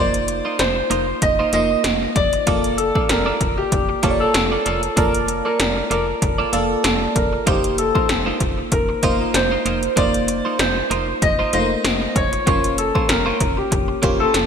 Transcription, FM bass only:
0.00 0.42 F1 loud
0.59 0.82 F1 medium
0.91 1.13 F1 medium
1.22 1.45 F1 medium
1.53 1.76 F1 medium
1.84 2.07 F1 loud
2.16 2.38 F1 loud
2.47 2.92 F1 loud
3.09 3.32 F1 loud
3.41 3.63 F1 medium
3.72 3.95 F1 loud
4.03 4.26 F1 medium
4.35 4.57 F1 loud
4.66 4.89 F1 medium
4.97 5.42 F1 loud
5.60 5.82 F1 loud
5.91 6.13 F1 loud
6.22 6.45 F1 loud
6.53 6.76 F1 medium
6.85 7.07 F1 loud
7.16 7.38 F1 medium
7.47 7.92 F1 loud
8.10 8.32 F1 loud
8.41 8.63 F1 medium
8.72 8.95 F1 medium
9.03 9.26 F1 medium
9.34 9.57 F1 loud
9.66 9.88 F1 medium
9.97 10.42 F1 loud
10.59 10.82 F1 loud
10.91 11.13 F1 medium
11.22 11.45 F1 loud
11.53 11.76 F1 medium
11.85 12.07 F1 medium
12.16 12.38 F1 medium
12.47 12.92 F1 loud
13.09 13.32 F1 medium
13.41 13.63 F1 loud
13.72 13.95 F1 loud
14.03 14.26 F1 medium
14.35 14.46 F1 loud

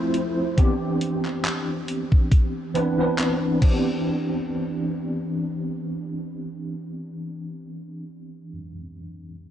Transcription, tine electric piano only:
0.00 0.60 F3 medium
0.00 0.60 A3 medium
0.00 0.58 C4 medium
0.00 0.59 E4 medium
0.00 0.60 C5 loud
0.56 2.70 E3 medium
0.56 2.71 B3 medium
0.56 2.71 C4 medium
0.56 2.71 D4 medium
0.56 2.72 G4 loud
2.74 2.93 E3 medium
2.74 2.93 B3 medium
2.74 2.93 C4 medium
2.74 2.93 D4 medium
2.74 2.93 B4 loud
2.97 3.59 E3 medium
2.97 3.60 B3 medium
2.97 3.61 C4 medium
2.97 3.62 D4 medium
2.97 3.63 B4 medium
3.60 8.51 E3 medium
3.60 8.52 B3 medium
3.60 8.53 C4 medium
3.60 8.54 D4 medium
3.64 8.55 G4 medium

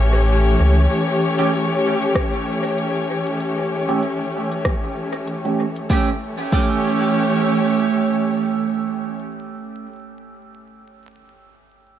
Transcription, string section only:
0.00 5.89 E3 medium
0.00 5.90 A3 medium
0.00 5.90 C#4 medium
0.00 5.90 G4 medium
0.00 5.90 C#5 medium
5.90 9.16 E3 medium
6.01 9.16 A3 medium
6.10 9.16 C#4 medium
6.19 9.16 G4 medium
6.29 9.16 C#5 medium

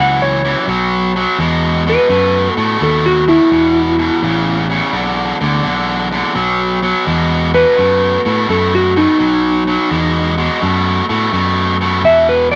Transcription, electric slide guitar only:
0.00 0.22 F#5 medium
0.22 0.67 C#5 loud
1.89 2.52 B4 loud
2.52 2.80 A4 loud
2.83 3.05 A4 medium
3.06 3.28 F#4 medium
3.28 4.66 E4 medium
7.54 8.46 B4 loud
8.50 8.72 A4 medium
8.75 8.96 F#4 medium
8.97 10.34 D#4 medium
12.05 12.27 E5 loud
12.29 12.51 B4 medium
12.52 12.55 D5 medium

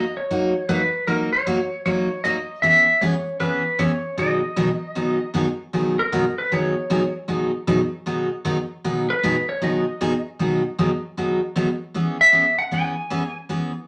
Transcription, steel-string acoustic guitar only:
0.31 0.52 F#3 medium
0.31 0.52 A#3 medium
0.31 0.52 D#4 medium
0.31 0.53 F#4 medium
0.69 0.81 F#3 medium
0.69 0.81 A#3 medium
0.69 0.81 D#4 medium
0.69 0.81 F#4 medium
1.07 1.29 F#3 medium
1.07 1.30 A#3 medium
1.07 1.30 D#4 medium
1.07 1.30 F#4 medium
1.47 1.58 F#3 medium
1.47 1.58 A#3 medium
1.47 1.58 D#4 medium
1.47 1.59 F#4 medium
1.86 2.07 F#3 medium
1.86 2.07 A#3 medium
1.86 2.08 D#4 medium
1.86 2.08 F#4 medium
2.24 2.36 F#3 medium
2.24 2.36 A#3 medium
2.24 2.36 D#4 medium
2.24 2.36 F#4 medium
2.63 2.85 E3 soft
2.63 2.85 B3 medium
2.63 2.85 C#4 medium
2.63 2.85 G#4 medium
3.01 3.13 E3 medium
3.01 3.13 B3 medium
3.01 3.13 C#4 medium
3.01 3.14 G#4 loud
3.40 3.62 E3 medium
3.40 3.62 B3 medium
3.40 3.62 C#4 medium
3.40 3.62 G#4 medium
3.79 3.90 E3 medium
3.79 3.91 B3 medium
3.79 3.91 C#4 medium
3.79 3.91 G#4 medium
4.18 4.40 B2 medium
4.18 4.40 D#3 medium
4.18 4.40 F#3 medium
4.18 4.40 B3 medium
4.18 4.40 D#4 medium
4.18 4.40 G#4 medium
4.56 4.68 B2 medium
4.56 4.68 D#3 medium
4.56 4.68 F#3 medium
4.56 4.68 B3 medium
4.56 4.69 D#4 medium
4.56 4.69 G#4 medium
4.95 5.17 B2 medium
4.95 5.17 D#3 medium
4.95 5.18 F#3 medium
4.95 5.18 B3 medium
4.95 5.18 D#4 medium
4.95 5.18 G#4 medium
5.34 5.46 B2 medium
5.34 5.46 D#3 medium
5.34 5.46 F#3 medium
5.34 5.46 B3 medium
5.34 5.46 D#4 medium
5.34 5.46 G#4 medium
5.73 5.95 B2 medium
5.73 5.95 D#3 medium
5.73 5.95 F#3 medium
5.73 5.96 B3 medium
5.73 5.96 D#4 medium
5.73 5.96 G#4 medium
6.12 6.24 B2 medium
6.12 6.24 D#3 medium
6.12 6.24 F#3 medium
6.12 6.24 B3 medium
6.12 6.24 D#4 medium
6.12 6.24 G#4 medium
6.52 6.73 B2 medium
6.52 6.73 D#3 medium
6.52 6.73 F#3 medium
6.52 6.73 B3 medium
6.52 6.73 D#4 medium
6.52 6.74 G#4 medium
6.90 7.01 B2 medium
6.90 7.02 D#3 medium
6.90 7.02 F#3 medium
6.90 7.02 B3 medium
6.90 7.02 D#4 medium
6.90 7.02 G#4 medium
7.28 7.50 B2 medium
7.28 7.50 D#3 medium
7.28 7.50 F#3 medium
7.28 7.51 B3 medium
7.28 7.51 D#4 medium
7.28 7.51 G#4 medium
7.67 7.79 B2 medium
7.67 7.79 D#3 medium
7.67 7.79 F#3 medium
7.67 7.79 B3 medium
7.67 7.79 D#4 medium
7.67 7.79 G#4 medium
8.06 8.28 B2 medium
8.06 8.28 D#3 medium
8.06 8.28 F#3 medium
8.06 8.28 B3 medium
8.06 8.29 D#4 medium
8.06 8.29 G#4 medium
8.45 8.57 B2 medium
8.45 8.57 D#3 medium
8.45 8.57 F#3 medium
8.45 8.57 B3 medium
8.45 8.57 D#4 medium
8.45 8.57 G#4 medium
8.84 9.06 B2 medium
8.84 9.06 D#3 medium
8.84 9.06 F#3 medium
8.84 9.06 B3 medium
8.84 9.06 D#4 medium
8.84 9.07 G#4 medium
9.23 9.35 B2 medium
9.23 9.35 D#3 medium
9.23 9.35 F#3 medium
9.23 9.35 B3 medium
9.23 9.35 D#4 medium
9.23 9.35 G#4 medium
9.62 9.84 B2 medium
9.62 9.84 D#3 medium
9.62 9.84 F#3 medium
9.62 9.84 B3 medium
9.62 9.84 D#4 medium
9.62 9.84 G#4 medium
10.01 10.12 B2 medium
10.01 10.12 D#3 medium
10.01 10.12 F#3 medium
10.01 10.12 B3 medium
10.01 10.13 D#4 medium
10.01 10.13 G#4 medium
10.39 10.61 B2 soft
10.39 10.61 D#3 medium
10.39 10.61 F#3 medium
10.39 10.62 B3 medium
10.39 10.62 D#4 medium
10.39 10.62 G#4 medium
10.79 10.90 B2 medium
10.79 10.90 D#3 medium
10.79 10.90 F#3 medium
10.79 10.90 B3 medium
10.79 10.90 D#4 medium
10.79 10.90 G#4 medium
11.17 11.39 B2 medium
11.17 11.39 D#3 medium
11.17 11.39 F#3 medium
11.17 11.39 B3 medium
11.17 11.39 D#4 medium
11.17 11.39 G#4 medium
11.56 11.67 B2 medium
11.56 11.67 D#3 medium
11.56 11.67 F#3 medium
11.56 11.68 B3 medium
11.56 11.68 D#4 medium
11.56 11.68 G#4 medium
11.94 12.16 E3 medium
11.94 12.17 B3 medium
11.94 12.17 C#4 medium
11.94 12.17 G#4 medium
12.32 12.44 E3 medium
12.32 12.44 B3 medium
12.32 12.45 C#4 medium
12.32 12.45 G#4 medium
12.71 12.94 E3 medium
12.71 12.94 B3 medium
12.71 12.94 C#4 medium
12.71 12.94 G#4 medium
13.10 13.22 E3 medium
13.10 13.22 B3 medium
13.10 13.22 C#4 medium
13.10 13.23 G#4 medium
13.49 13.71 E3 medium
13.49 13.71 B3 medium
13.49 13.71 C#4 medium
13.49 13.72 G#4 medium

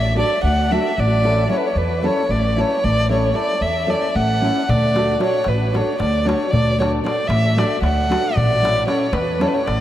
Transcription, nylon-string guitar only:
0.15 0.34 A3 medium
0.15 0.35 D4 medium
0.15 0.35 F#4 medium
0.15 0.36 A4 medium
0.71 0.90 A3 medium
0.71 0.90 D4 medium
0.71 0.90 F#4 medium
0.71 0.90 A4 medium
1.24 1.42 A3 medium
1.24 1.42 C#4 medium
1.24 1.43 E4 medium
1.24 1.43 A4 medium
1.48 1.67 A3 medium
1.48 1.67 C#4 medium
1.48 1.67 E4 soft
1.48 1.68 A4 medium
2.02 2.21 A3 medium
2.02 2.21 C#4 medium
2.02 2.22 E4 medium
2.02 2.22 A4 medium
2.56 2.75 A3 medium
2.56 2.75 C#4 medium
2.56 2.76 E4 medium
2.56 2.76 A4 medium
3.09 3.28 A3 medium
3.09 3.28 C#4 soft
3.09 3.28 E4 soft
3.09 3.28 A4 medium
3.34 3.52 A3 soft
3.34 3.52 C#4 soft
3.34 3.53 E4 soft
3.34 3.53 A4 medium
3.87 4.06 A3 medium
3.87 4.06 C#4 medium
3.87 4.07 E4 medium
3.87 4.07 A4 medium
4.41 4.60 A3 medium
4.41 4.61 C#4 medium
4.41 4.61 E4 medium
4.41 4.61 A4 medium
4.94 5.13 A3 medium
4.94 5.13 D4 soft
4.94 5.13 F#4 medium
4.94 5.14 A4 medium
5.19 5.38 A3 medium
5.19 5.38 D4 soft
5.19 5.38 F#4 soft
5.19 5.38 A4 medium
5.73 5.91 A3 medium
5.73 5.92 D4 medium
5.73 5.92 F#4 medium
5.73 5.92 A4 medium
6.25 6.44 A3 medium
6.25 6.45 D4 medium
6.25 6.45 F#4 medium
6.25 6.45 A4 medium
6.79 6.97 A3 medium
6.79 6.98 D4 medium
6.79 6.98 F#4 medium
6.79 6.98 A4 medium
7.04 7.22 A3 medium
7.04 7.22 D4 soft
7.04 7.22 F#4 soft
7.04 7.22 A4 medium
7.56 7.75 A3 medium
7.56 7.75 D4 medium
7.56 7.76 F#4 medium
7.56 7.76 A4 medium
8.10 8.29 A3 medium
8.10 8.29 D4 medium
8.10 8.29 F#4 medium
8.10 8.30 A4 medium
8.62 8.81 A3 medium
8.62 8.81 C#4 soft
8.62 8.81 E4 medium
8.62 8.82 A4 medium
8.87 9.05 A3 soft
8.87 9.05 C#4 medium
8.87 9.06 E4 soft
8.87 9.06 A4 medium
9.39 9.58 A3 medium
9.39 9.59 C#4 medium
9.39 9.59 E4 medium
9.39 9.59 A4 medium

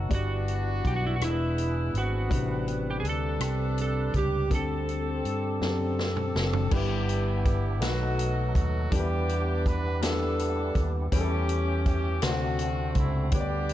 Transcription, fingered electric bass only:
0.10 0.80 G1 medium
0.84 1.18 B1 medium
1.19 1.90 E1 medium
1.94 2.28 G#1 medium
2.31 3.01 A1 medium
3.03 3.38 D2 medium
3.39 4.10 C2 medium
4.14 4.48 C#2 medium
4.50 5.21 D2 medium
5.25 5.59 G2 medium
5.61 6.31 F#2 medium
6.35 6.69 F#1 medium
6.71 7.82 G1 medium
7.82 8.51 B1 medium
8.55 8.89 D#2 medium
8.92 10.71 E2 medium
10.75 11.09 D#2 medium
11.12 12.18 E2 medium
12.23 12.92 D2 medium
12.95 13.29 C#2 medium
13.33 13.73 D2 loud

